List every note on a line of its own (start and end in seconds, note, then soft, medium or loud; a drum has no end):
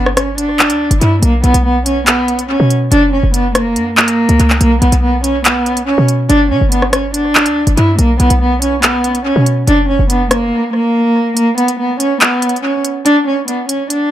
0.00 0.71 G1 loud
0.00 0.13 B3 medium
0.06 cross-stick medium
0.17 0.34 C#4 medium
0.17 cross-stick loud
0.17 closed hi-hat medium
0.38 0.98 D4 loud
0.38 closed hi-hat medium
0.59 clap loud
0.70 0.90 D2 loud
0.70 closed hi-hat medium
0.91 1.01 G1 loud
0.91 closed hi-hat medium
1.01 1.22 G2 loud
1.01 1.19 E4 medium
1.01 closed hi-hat medium
1.22 1.43 B1 loud
1.22 1.40 A#3 loud
1.22 closed hi-hat medium
1.44 1.54 B1 loud
1.44 1.61 B3 loud
1.44 closed hi-hat medium
1.54 2.56 B1 loud
1.54 closed hi-hat medium
1.65 1.82 B3 medium
1.86 2.03 C#4 medium
1.86 closed hi-hat medium
2.07 2.47 B3 medium
2.07 clap loud
2.07 closed hi-hat medium
2.28 closed hi-hat medium
2.39 closed hi-hat medium
2.49 2.67 C#4 medium
2.60 2.90 B2 loud
2.71 closed hi-hat medium
2.91 3.22 F#1 loud
2.91 3.09 D4 loud
2.91 closed hi-hat medium
3.13 3.30 C#4 medium
3.23 3.78 F#1 loud
3.34 3.51 B3 medium
3.34 closed hi-hat medium
3.55 3.95 A#3 medium
3.55 cross-stick medium
3.55 closed hi-hat medium
3.76 4.26 F#2 loud
3.76 closed hi-hat medium
3.97 4.57 A#3 loud
3.97 clap loud
4.08 closed hi-hat medium
4.29 4.39 C#2 loud
4.29 closed hi-hat medium
4.40 4.60 C#2 loud
4.40 closed hi-hat medium
4.50 clap medium
4.61 4.81 B1 loud
4.61 4.78 A#3 loud
4.61 closed hi-hat medium
4.81 4.92 B1 loud
4.81 4.99 B3 medium
4.81 closed hi-hat medium
4.92 5.94 B1 loud
4.92 closed hi-hat medium
5.03 5.20 B3 medium
5.24 5.41 C#4 medium
5.24 closed hi-hat medium
5.45 5.85 B3 medium
5.45 clap loud
5.45 closed hi-hat medium
5.66 closed hi-hat medium
5.77 closed hi-hat medium
5.87 6.05 C#4 medium
5.98 6.28 B2 loud
6.08 closed hi-hat medium
6.29 6.52 G1 loud
6.29 6.47 D4 loud
6.29 closed hi-hat medium
6.51 6.61 D3 loud
6.51 6.68 C#4 medium
6.61 7.47 G1 loud
6.72 6.89 B3 medium
6.72 closed hi-hat medium
6.82 cross-stick medium
6.92 7.10 C#4 medium
6.92 cross-stick loud
6.92 closed hi-hat medium
7.14 7.74 D4 medium
7.14 closed hi-hat medium
7.35 clap loud
7.46 7.66 D2 loud
7.46 closed hi-hat medium
7.67 7.77 G1 loud
7.67 closed hi-hat medium
7.77 7.98 G2 loud
7.77 7.95 E4 medium
7.77 closed hi-hat medium
7.99 8.19 B1 loud
7.99 8.16 A#3 loud
7.99 closed hi-hat medium
8.20 8.30 B1 loud
8.20 8.37 B3 loud
8.20 closed hi-hat medium
8.30 9.32 B1 loud
8.30 closed hi-hat medium
8.42 8.59 B3 medium
8.62 8.79 C#4 medium
8.62 closed hi-hat loud
8.83 9.23 B3 medium
8.83 clap loud
8.83 closed hi-hat medium
9.04 closed hi-hat medium
9.15 closed hi-hat medium
9.26 9.43 C#4 medium
9.36 9.66 B2 loud
9.46 closed hi-hat medium
9.68 9.98 F#1 loud
9.68 9.85 D4 loud
9.68 closed hi-hat medium
9.89 10.06 C#4 medium
9.99 10.52 F#1 loud
10.10 10.27 B3 medium
10.10 closed hi-hat medium
10.31 10.71 A#3 medium
10.31 cross-stick loud
10.31 closed hi-hat medium
10.73 11.33 A#3 loud
11.37 11.54 A#3 loud
11.37 closed hi-hat medium
11.57 11.75 B3 medium
11.57 closed hi-hat medium
11.68 closed hi-hat medium
11.79 11.96 B3 medium
12.00 12.17 C#4 medium
12.00 closed hi-hat medium
12.21 12.61 B3 medium
12.21 clap loud
12.21 closed hi-hat medium
12.42 closed hi-hat medium
12.49 closed hi-hat medium
12.56 closed hi-hat soft
12.63 12.81 C#4 medium
12.85 closed hi-hat medium
13.05 13.23 D4 loud
13.05 closed hi-hat medium
13.27 13.44 C#4 medium
13.48 13.65 B3 medium
13.48 closed hi-hat medium
13.69 13.86 C#4 medium
13.69 closed hi-hat medium
13.90 14.11 D4 medium
13.90 closed hi-hat medium